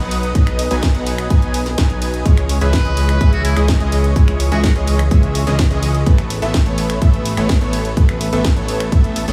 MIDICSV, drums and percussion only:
0, 0, Header, 1, 2, 480
1, 0, Start_track
1, 0, Key_signature, 4, "minor"
1, 0, Tempo, 476190
1, 354, Time_signature, 4, 2, 24, 8
1, 9404, End_track
2, 0, Start_track
2, 0, Title_t, "Drums"
2, 114, Note_on_c, 9, 46, 91
2, 114, Note_on_c, 9, 51, 83
2, 215, Note_off_c, 9, 46, 0
2, 215, Note_off_c, 9, 51, 0
2, 234, Note_on_c, 9, 42, 55
2, 335, Note_off_c, 9, 42, 0
2, 354, Note_on_c, 9, 36, 116
2, 354, Note_on_c, 9, 42, 83
2, 454, Note_off_c, 9, 42, 0
2, 455, Note_off_c, 9, 36, 0
2, 474, Note_on_c, 9, 26, 63
2, 474, Note_on_c, 9, 42, 39
2, 574, Note_off_c, 9, 26, 0
2, 574, Note_off_c, 9, 42, 0
2, 593, Note_on_c, 9, 46, 106
2, 593, Note_on_c, 9, 51, 85
2, 694, Note_off_c, 9, 46, 0
2, 694, Note_off_c, 9, 51, 0
2, 713, Note_on_c, 9, 42, 57
2, 814, Note_off_c, 9, 42, 0
2, 833, Note_on_c, 9, 38, 124
2, 834, Note_on_c, 9, 36, 115
2, 834, Note_on_c, 9, 42, 88
2, 934, Note_off_c, 9, 38, 0
2, 935, Note_off_c, 9, 36, 0
2, 935, Note_off_c, 9, 42, 0
2, 954, Note_on_c, 9, 42, 40
2, 1055, Note_off_c, 9, 42, 0
2, 1074, Note_on_c, 9, 46, 94
2, 1074, Note_on_c, 9, 51, 86
2, 1175, Note_off_c, 9, 46, 0
2, 1175, Note_off_c, 9, 51, 0
2, 1194, Note_on_c, 9, 26, 79
2, 1194, Note_on_c, 9, 42, 59
2, 1295, Note_off_c, 9, 26, 0
2, 1295, Note_off_c, 9, 42, 0
2, 1314, Note_on_c, 9, 36, 118
2, 1314, Note_on_c, 9, 42, 85
2, 1415, Note_off_c, 9, 36, 0
2, 1415, Note_off_c, 9, 42, 0
2, 1434, Note_on_c, 9, 42, 40
2, 1535, Note_off_c, 9, 42, 0
2, 1554, Note_on_c, 9, 46, 108
2, 1554, Note_on_c, 9, 51, 84
2, 1655, Note_off_c, 9, 46, 0
2, 1655, Note_off_c, 9, 51, 0
2, 1673, Note_on_c, 9, 38, 39
2, 1674, Note_on_c, 9, 42, 59
2, 1774, Note_off_c, 9, 38, 0
2, 1775, Note_off_c, 9, 42, 0
2, 1793, Note_on_c, 9, 38, 121
2, 1794, Note_on_c, 9, 36, 122
2, 1794, Note_on_c, 9, 42, 86
2, 1894, Note_off_c, 9, 38, 0
2, 1895, Note_off_c, 9, 36, 0
2, 1895, Note_off_c, 9, 42, 0
2, 1914, Note_on_c, 9, 42, 39
2, 2015, Note_off_c, 9, 42, 0
2, 2033, Note_on_c, 9, 46, 88
2, 2033, Note_on_c, 9, 51, 83
2, 2134, Note_off_c, 9, 46, 0
2, 2134, Note_off_c, 9, 51, 0
2, 2154, Note_on_c, 9, 42, 57
2, 2255, Note_off_c, 9, 42, 0
2, 2274, Note_on_c, 9, 36, 126
2, 2274, Note_on_c, 9, 42, 83
2, 2375, Note_off_c, 9, 36, 0
2, 2375, Note_off_c, 9, 42, 0
2, 2394, Note_on_c, 9, 26, 62
2, 2394, Note_on_c, 9, 42, 38
2, 2495, Note_off_c, 9, 26, 0
2, 2495, Note_off_c, 9, 42, 0
2, 2514, Note_on_c, 9, 46, 111
2, 2514, Note_on_c, 9, 51, 80
2, 2614, Note_off_c, 9, 46, 0
2, 2614, Note_off_c, 9, 51, 0
2, 2634, Note_on_c, 9, 42, 57
2, 2734, Note_off_c, 9, 42, 0
2, 2753, Note_on_c, 9, 38, 127
2, 2754, Note_on_c, 9, 36, 121
2, 2754, Note_on_c, 9, 42, 84
2, 2854, Note_off_c, 9, 38, 0
2, 2854, Note_off_c, 9, 42, 0
2, 2855, Note_off_c, 9, 36, 0
2, 2874, Note_on_c, 9, 42, 40
2, 2974, Note_off_c, 9, 42, 0
2, 2994, Note_on_c, 9, 46, 100
2, 2994, Note_on_c, 9, 51, 81
2, 3095, Note_off_c, 9, 46, 0
2, 3095, Note_off_c, 9, 51, 0
2, 3114, Note_on_c, 9, 26, 78
2, 3114, Note_on_c, 9, 42, 55
2, 3215, Note_off_c, 9, 26, 0
2, 3215, Note_off_c, 9, 42, 0
2, 3234, Note_on_c, 9, 36, 125
2, 3234, Note_on_c, 9, 42, 83
2, 3335, Note_off_c, 9, 36, 0
2, 3335, Note_off_c, 9, 42, 0
2, 3354, Note_on_c, 9, 42, 41
2, 3455, Note_off_c, 9, 42, 0
2, 3474, Note_on_c, 9, 46, 109
2, 3474, Note_on_c, 9, 51, 81
2, 3575, Note_off_c, 9, 46, 0
2, 3575, Note_off_c, 9, 51, 0
2, 3594, Note_on_c, 9, 26, 68
2, 3594, Note_on_c, 9, 42, 56
2, 3695, Note_off_c, 9, 26, 0
2, 3695, Note_off_c, 9, 42, 0
2, 3713, Note_on_c, 9, 38, 127
2, 3713, Note_on_c, 9, 42, 84
2, 3714, Note_on_c, 9, 36, 124
2, 3813, Note_off_c, 9, 38, 0
2, 3814, Note_off_c, 9, 36, 0
2, 3814, Note_off_c, 9, 42, 0
2, 3834, Note_on_c, 9, 42, 39
2, 3934, Note_off_c, 9, 42, 0
2, 3954, Note_on_c, 9, 46, 92
2, 3954, Note_on_c, 9, 51, 81
2, 4055, Note_off_c, 9, 46, 0
2, 4055, Note_off_c, 9, 51, 0
2, 4074, Note_on_c, 9, 42, 56
2, 4175, Note_off_c, 9, 42, 0
2, 4194, Note_on_c, 9, 36, 126
2, 4194, Note_on_c, 9, 42, 81
2, 4294, Note_off_c, 9, 36, 0
2, 4295, Note_off_c, 9, 42, 0
2, 4314, Note_on_c, 9, 26, 63
2, 4314, Note_on_c, 9, 42, 37
2, 4415, Note_off_c, 9, 26, 0
2, 4415, Note_off_c, 9, 42, 0
2, 4434, Note_on_c, 9, 46, 115
2, 4434, Note_on_c, 9, 51, 79
2, 4535, Note_off_c, 9, 46, 0
2, 4535, Note_off_c, 9, 51, 0
2, 4554, Note_on_c, 9, 42, 55
2, 4655, Note_off_c, 9, 42, 0
2, 4673, Note_on_c, 9, 36, 124
2, 4673, Note_on_c, 9, 38, 125
2, 4674, Note_on_c, 9, 42, 84
2, 4774, Note_off_c, 9, 36, 0
2, 4774, Note_off_c, 9, 38, 0
2, 4775, Note_off_c, 9, 42, 0
2, 4794, Note_on_c, 9, 42, 38
2, 4895, Note_off_c, 9, 42, 0
2, 4914, Note_on_c, 9, 46, 99
2, 4914, Note_on_c, 9, 51, 79
2, 5015, Note_off_c, 9, 46, 0
2, 5015, Note_off_c, 9, 51, 0
2, 5033, Note_on_c, 9, 26, 75
2, 5033, Note_on_c, 9, 42, 56
2, 5134, Note_off_c, 9, 26, 0
2, 5134, Note_off_c, 9, 42, 0
2, 5153, Note_on_c, 9, 36, 126
2, 5153, Note_on_c, 9, 42, 83
2, 5253, Note_off_c, 9, 42, 0
2, 5254, Note_off_c, 9, 36, 0
2, 5273, Note_on_c, 9, 42, 39
2, 5374, Note_off_c, 9, 42, 0
2, 5393, Note_on_c, 9, 46, 116
2, 5393, Note_on_c, 9, 51, 78
2, 5494, Note_off_c, 9, 46, 0
2, 5494, Note_off_c, 9, 51, 0
2, 5513, Note_on_c, 9, 38, 41
2, 5514, Note_on_c, 9, 42, 55
2, 5614, Note_off_c, 9, 38, 0
2, 5614, Note_off_c, 9, 42, 0
2, 5633, Note_on_c, 9, 36, 126
2, 5633, Note_on_c, 9, 38, 124
2, 5633, Note_on_c, 9, 42, 82
2, 5733, Note_off_c, 9, 38, 0
2, 5734, Note_off_c, 9, 36, 0
2, 5734, Note_off_c, 9, 42, 0
2, 5753, Note_on_c, 9, 42, 38
2, 5854, Note_off_c, 9, 42, 0
2, 5873, Note_on_c, 9, 46, 100
2, 5873, Note_on_c, 9, 51, 79
2, 5974, Note_off_c, 9, 46, 0
2, 5974, Note_off_c, 9, 51, 0
2, 5993, Note_on_c, 9, 42, 54
2, 6094, Note_off_c, 9, 42, 0
2, 6113, Note_on_c, 9, 36, 127
2, 6113, Note_on_c, 9, 42, 75
2, 6214, Note_off_c, 9, 36, 0
2, 6214, Note_off_c, 9, 42, 0
2, 6234, Note_on_c, 9, 26, 66
2, 6234, Note_on_c, 9, 42, 36
2, 6335, Note_off_c, 9, 26, 0
2, 6335, Note_off_c, 9, 42, 0
2, 6354, Note_on_c, 9, 46, 112
2, 6354, Note_on_c, 9, 51, 76
2, 6454, Note_off_c, 9, 46, 0
2, 6454, Note_off_c, 9, 51, 0
2, 6474, Note_on_c, 9, 42, 54
2, 6574, Note_off_c, 9, 42, 0
2, 6592, Note_on_c, 9, 38, 127
2, 6593, Note_on_c, 9, 42, 76
2, 6594, Note_on_c, 9, 36, 124
2, 6693, Note_off_c, 9, 38, 0
2, 6694, Note_off_c, 9, 36, 0
2, 6694, Note_off_c, 9, 42, 0
2, 6713, Note_on_c, 9, 42, 39
2, 6814, Note_off_c, 9, 42, 0
2, 6833, Note_on_c, 9, 46, 105
2, 6833, Note_on_c, 9, 51, 79
2, 6934, Note_off_c, 9, 46, 0
2, 6934, Note_off_c, 9, 51, 0
2, 6953, Note_on_c, 9, 26, 78
2, 6953, Note_on_c, 9, 42, 53
2, 7054, Note_off_c, 9, 26, 0
2, 7054, Note_off_c, 9, 42, 0
2, 7073, Note_on_c, 9, 36, 127
2, 7073, Note_on_c, 9, 42, 80
2, 7174, Note_off_c, 9, 36, 0
2, 7174, Note_off_c, 9, 42, 0
2, 7193, Note_on_c, 9, 42, 36
2, 7293, Note_off_c, 9, 42, 0
2, 7313, Note_on_c, 9, 46, 117
2, 7313, Note_on_c, 9, 51, 77
2, 7414, Note_off_c, 9, 46, 0
2, 7414, Note_off_c, 9, 51, 0
2, 7433, Note_on_c, 9, 26, 68
2, 7433, Note_on_c, 9, 42, 53
2, 7533, Note_off_c, 9, 26, 0
2, 7533, Note_off_c, 9, 42, 0
2, 7552, Note_on_c, 9, 38, 125
2, 7553, Note_on_c, 9, 42, 81
2, 7554, Note_on_c, 9, 36, 127
2, 7653, Note_off_c, 9, 38, 0
2, 7654, Note_off_c, 9, 36, 0
2, 7654, Note_off_c, 9, 42, 0
2, 7673, Note_on_c, 9, 42, 37
2, 7774, Note_off_c, 9, 42, 0
2, 7793, Note_on_c, 9, 46, 100
2, 7793, Note_on_c, 9, 51, 79
2, 7894, Note_off_c, 9, 46, 0
2, 7894, Note_off_c, 9, 51, 0
2, 7913, Note_on_c, 9, 42, 52
2, 8014, Note_off_c, 9, 42, 0
2, 8033, Note_on_c, 9, 36, 127
2, 8033, Note_on_c, 9, 42, 75
2, 8134, Note_off_c, 9, 36, 0
2, 8134, Note_off_c, 9, 42, 0
2, 8154, Note_on_c, 9, 26, 68
2, 8154, Note_on_c, 9, 42, 35
2, 8254, Note_off_c, 9, 26, 0
2, 8254, Note_off_c, 9, 42, 0
2, 8273, Note_on_c, 9, 46, 109
2, 8273, Note_on_c, 9, 51, 77
2, 8374, Note_off_c, 9, 46, 0
2, 8374, Note_off_c, 9, 51, 0
2, 8394, Note_on_c, 9, 42, 51
2, 8494, Note_off_c, 9, 42, 0
2, 8512, Note_on_c, 9, 38, 121
2, 8513, Note_on_c, 9, 36, 125
2, 8513, Note_on_c, 9, 42, 79
2, 8613, Note_off_c, 9, 38, 0
2, 8614, Note_off_c, 9, 36, 0
2, 8614, Note_off_c, 9, 42, 0
2, 8634, Note_on_c, 9, 42, 37
2, 8734, Note_off_c, 9, 42, 0
2, 8754, Note_on_c, 9, 46, 99
2, 8754, Note_on_c, 9, 51, 79
2, 8855, Note_off_c, 9, 46, 0
2, 8855, Note_off_c, 9, 51, 0
2, 8874, Note_on_c, 9, 26, 84
2, 8874, Note_on_c, 9, 42, 52
2, 8975, Note_off_c, 9, 26, 0
2, 8975, Note_off_c, 9, 42, 0
2, 8993, Note_on_c, 9, 36, 127
2, 8994, Note_on_c, 9, 42, 77
2, 9094, Note_off_c, 9, 36, 0
2, 9095, Note_off_c, 9, 42, 0
2, 9114, Note_on_c, 9, 42, 37
2, 9215, Note_off_c, 9, 42, 0
2, 9234, Note_on_c, 9, 46, 116
2, 9234, Note_on_c, 9, 51, 79
2, 9334, Note_off_c, 9, 46, 0
2, 9334, Note_off_c, 9, 51, 0
2, 9353, Note_on_c, 9, 38, 37
2, 9353, Note_on_c, 9, 42, 53
2, 9404, Note_off_c, 9, 38, 0
2, 9404, Note_off_c, 9, 42, 0
2, 9404, End_track
0, 0, End_of_file